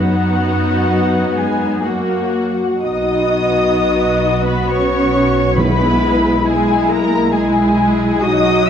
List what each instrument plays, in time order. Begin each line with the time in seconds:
Already playing: double bass section F#2, cello section F#3, viola section B3 D#4, french horn section B3 D#4, violin section F#4 F#5
1.35 cello section G#3, violin section G#4 G#5
1.82 cello section F#3, viola section A#3 F#4, french horn section A#3 F#4, violin section F#4 F#5
2.83 double bass section B1, viola section B3 F#4, french horn section B3, cello section D#4, violin section D#5 D#6
4.45 cello section B3, violin section B4 B5
4.67 cello section C#4, violin section C#5 C#6
5.57 timpani B2, viola section G#3 E4, french horn section G#3 E4, cello section B3, violin section B4 B5
6.44 cello section G#3, viola section G#3 E4, violin section G#4 G#5
6.88 cello section A#3, violin section A#4 A#5
7.33 cello section G#3, viola section G#3 E4, violin section G#4 G#5
8.21 double bass section B1, viola section F#3 F#4, french horn section F#3 F#4, cello section D#4, violin section D#5 D#6
8.66 cello section E4, violin section E5 E6